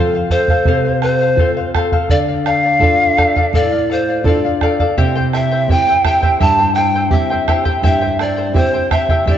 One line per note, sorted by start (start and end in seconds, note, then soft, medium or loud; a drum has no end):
0.00 0.52 C4 soft
0.00 0.52 F4 soft
0.00 0.14 A4 medium
0.00 0.52 A4 medium
0.00 0.14 C5 medium
0.00 0.14 F5 medium
0.15 0.30 C5 soft
0.15 0.30 F5 medium
0.30 0.49 A4 medium
0.30 0.99 C5 medium
0.30 0.49 C5 medium
0.30 0.49 F5 medium
0.30 bombo low medium
0.48 0.66 A4 medium
0.48 0.67 C5 medium
0.48 0.67 F5 medium
0.48 bombo low medium
0.65 1.36 C3 medium
0.65 0.85 A4 medium
0.65 0.85 C5 medium
0.65 0.84 F5 medium
0.65 bombo low medium
0.85 1.02 C5 soft
0.85 1.02 F5 soft
1.02 1.21 A4 medium
1.02 1.70 C5 loud
1.02 1.21 C5 medium
1.02 1.20 F5 medium
1.02 bombo rim soft
1.21 1.38 C5 soft
1.21 1.39 F5 medium
1.36 1.95 C4 medium
1.36 1.95 F4 soft
1.36 1.95 A4 medium
1.36 1.57 A4 medium
1.36 1.57 C5 medium
1.36 bombo low medium
1.40 1.56 F5 medium
1.57 1.74 C5 soft
1.57 1.75 F5 medium
1.75 1.92 A4 medium
1.75 1.92 C5 medium
1.75 1.91 F5 medium
1.75 bombo rim medium
1.75 bombo low soft
1.92 2.09 A4 medium
1.92 2.11 C5 medium
1.92 2.10 F5 medium
1.92 bombo low medium
2.09 2.80 D3 medium
2.09 2.28 A4 medium
2.09 2.28 D5 medium
2.09 2.19 D5 medium
2.09 2.27 F5 medium
2.09 bombo low medium
2.28 2.45 D5 soft
2.28 2.46 F5 medium
2.46 2.64 A4 medium
2.46 2.64 D5 medium
2.46 3.50 F5 loud
2.46 2.62 F5 medium
2.46 bombo rim soft
2.63 2.81 D5 soft
2.63 2.82 F5 medium
2.80 3.38 D4 soft
2.80 3.39 F4 soft
2.80 3.39 A4 medium
2.80 3.00 A4 medium
2.80 3.00 D5 medium
2.80 2.99 F5 medium
2.80 bombo low medium
3.00 3.17 D5 soft
3.00 3.17 F5 medium
3.18 3.36 A4 medium
3.18 3.35 D5 medium
3.18 3.34 F5 medium
3.18 bombo rim medium
3.18 bombo low medium
3.36 3.53 A4 soft
3.36 3.54 D5 medium
3.36 3.54 F5 medium
3.36 bombo low medium
3.53 4.23 A2 medium
3.53 3.72 A4 medium
3.53 3.72 D5 medium
3.53 3.94 D5 medium
3.53 3.71 F5 medium
3.53 bombo low medium
3.72 3.90 D5 soft
3.72 3.90 F5 medium
3.90 4.08 A4 soft
3.90 4.28 C5 medium
3.90 4.08 D5 medium
3.90 4.07 F5 medium
4.09 4.26 D5 soft
4.09 4.26 F5 medium
4.24 4.82 D4 medium
4.24 4.82 F4 soft
4.24 4.82 A4 medium
4.24 4.44 A4 medium
4.24 4.80 D5 medium
4.24 4.44 D5 medium
4.24 4.44 F5 medium
4.24 bombo low medium
4.45 4.62 D5 soft
4.45 4.62 F5 medium
4.61 4.80 A4 medium
4.61 4.79 D5 medium
4.61 4.79 F5 medium
4.61 bombo rim medium
4.61 bombo low soft
4.80 4.98 A4 medium
4.80 4.98 D5 medium
4.80 4.98 F5 medium
4.80 bombo low medium
4.98 5.67 C3 medium
4.98 5.16 E4 medium
4.98 5.15 G4 medium
4.98 5.15 C5 medium
4.98 5.16 E5 medium
4.98 5.14 G5 medium
4.98 bombo low medium
5.16 5.33 E4 soft
5.16 5.33 C5 medium
5.16 5.33 G5 medium
5.33 5.51 E4 medium
5.33 5.51 C5 medium
5.33 5.51 E5 medium
5.33 5.73 E5 medium
5.33 5.50 G5 medium
5.33 bombo rim soft
5.51 5.70 E4 soft
5.51 5.69 C5 soft
5.51 5.69 G5 soft
5.68 6.26 C4 medium
5.68 6.26 E4 soft
5.68 5.88 E4 medium
5.68 6.26 G4 medium
5.68 5.87 C5 medium
5.68 5.87 E5 medium
5.68 5.87 G5 medium
5.68 6.06 G5 loud
5.68 bombo low medium
5.88 6.04 E4 soft
5.88 6.05 C5 medium
5.88 6.05 G5 soft
6.05 6.22 E4 medium
6.05 6.22 G4 medium
6.05 6.22 C5 medium
6.05 6.22 E5 medium
6.05 6.21 G5 medium
6.05 6.39 G5 loud
6.05 bombo rim medium
6.05 bombo low medium
6.22 6.40 E4 medium
6.22 6.39 G4 medium
6.22 6.40 C5 medium
6.22 6.39 E5 medium
6.22 6.40 G5 medium
6.22 bombo low medium
6.40 7.10 G2 medium
6.40 6.58 E4 medium
6.40 6.58 G4 medium
6.40 6.58 C5 medium
6.40 6.58 E5 medium
6.40 6.57 G5 medium
6.40 6.74 A5 loud
6.40 bombo low medium
6.58 6.76 E4 soft
6.58 6.77 C5 soft
6.58 6.76 G5 soft
6.75 6.94 E4 medium
6.75 6.95 C5 medium
6.75 6.94 E5 medium
6.75 7.09 G5 medium
6.75 6.94 G5 medium
6.75 bombo rim soft
6.95 7.12 E4 soft
6.95 7.12 C5 medium
6.95 7.13 G5 medium
7.11 7.68 C4 medium
7.11 7.68 E4 soft
7.11 7.30 E4 medium
7.11 7.69 G4 medium
7.11 7.30 C5 medium
7.11 7.58 E5 medium
7.11 7.30 E5 medium
7.11 7.29 G5 medium
7.11 bombo low medium
7.30 7.48 E4 medium
7.30 7.48 C5 medium
7.30 7.48 G5 medium
7.48 7.64 E4 medium
7.48 7.65 G4 medium
7.48 7.64 C5 medium
7.48 7.64 E5 medium
7.48 7.64 G5 medium
7.48 bombo rim medium
7.48 bombo low medium
7.65 7.83 E4 medium
7.65 7.82 G4 medium
7.65 7.83 C5 medium
7.65 7.83 E5 medium
7.65 7.83 G5 medium
7.65 bombo low medium
7.83 8.52 G2 medium
7.83 8.01 E4 medium
7.83 8.01 G4 medium
7.83 8.01 C5 medium
7.83 8.01 E5 medium
7.83 8.18 E5 loud
7.83 8.00 G5 medium
7.83 bombo low medium
8.01 8.19 E4 soft
8.01 8.19 C5 soft
8.01 8.19 G5 medium
8.19 8.37 E4 medium
8.19 8.37 C5 medium
8.19 8.53 D5 medium
8.19 8.37 E5 medium
8.19 8.35 G5 medium
8.19 bombo rim soft
8.37 8.54 E4 soft
8.37 8.55 C5 soft
8.37 8.55 G5 soft
8.53 9.11 C4 soft
8.53 9.11 E4 soft
8.53 8.73 E4 medium
8.53 9.12 G4 medium
8.53 8.73 C5 medium
8.53 8.93 C5 medium
8.53 8.73 E5 medium
8.53 8.73 G5 medium
8.53 bombo low medium
8.74 8.91 E4 soft
8.74 8.91 C5 soft
8.74 8.91 G5 medium
8.91 9.09 E4 medium
8.91 9.09 G4 medium
8.91 9.09 C5 medium
8.91 9.09 E5 medium
8.91 9.27 E5 medium
8.91 9.08 G5 medium
8.91 bombo rim medium
8.91 bombo low medium
9.09 9.26 E4 medium
9.09 9.26 G4 soft
9.09 9.27 C5 medium
9.09 9.26 E5 medium
9.09 9.27 G5 medium
9.09 bombo low medium
9.25 9.38 G2 medium
9.25 9.38 E4 medium
9.25 9.38 G4 medium
9.25 9.38 C5 medium
9.25 9.38 D5 medium
9.25 9.38 E5 medium
9.25 9.38 G5 medium
9.25 bombo low medium